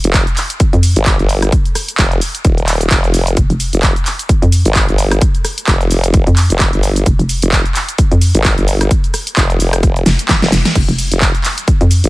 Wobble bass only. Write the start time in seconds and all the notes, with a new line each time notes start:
0.04 F1
0.96 G#1
1.19 G1
1.99 F1
2.45 D#1
2.91 F1
3.73 F1
4.66 G#1
4.89 G1
5.68 F1
5.91 F1
6.50 F1
6.73 G1
7.42 F1
8.35 G#1
8.58 G1
9.37 F1
9.60 F1
10.42 F1
11.12 F1
12.04 G#1